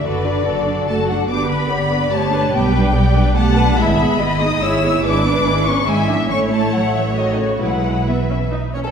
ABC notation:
X:1
M:3/4
L:1/16
Q:1/4=143
K:Glyd
V:1 name="Violin section"
d8 a2 f2 | d'2 b6 a4 | g8 a4 | [K:E] b6 d'2 e'4 |
=d'6 c'2 g2 e2 | c'2 a2 f2 e2 d2 c2 | f4 e4 z4 |]
V:2 name="Violin section"
B4 A8 | B4 d4 c4 | B4 d4 f4 | [K:E] e4 d4 c4 |
B8 e4 | c12 | B8- B2 c A |]
V:3 name="Viola section"
[FA]2 [DF]2 [FA]2 [DF]2 [FA]2 [DF]2 | [B,G]2 [DB]2 [B,G]2 [DB]2 [B,G]2 [DB]2 | [B,G]2 [DB]2 [B,G]2 [DB]2 [B,G]2 [DB]2 | [K:E] [G,E]2 [B,G]2 [G,E]2 [B,G]2 [G,E]2 [B,G]2 |
[G,E]2 [B,=D]2 [G,E]2 [B,D]2 [G,E]2 [B,D]2 | [A,E]8 [A,F]4 | [G,E]4 B,2 C2 D2 C2 |]
V:4 name="Cello section"
D,8 A,2 F,2 | D2 B,6 A,4 | G,8 A,4 | [K:E] B,6 D2 E4 |
=D6 C2 G,2 E,2 | C2 A,2 F,2 E,2 D,2 C,2 | F,4 E,4 z4 |]
V:5 name="Double bass section" clef=bass
F,,,4 F,,,4 F,,,4 | G,,,4 G,,,4 G,,,4 | B,,,4 B,,,4 B,,,4 | [K:E] G,,,4 G,,,4 G,,,4 |
G,,,4 G,,,4 G,,,4 | A,,,12 | B,,,8- B,,,2 z2 |]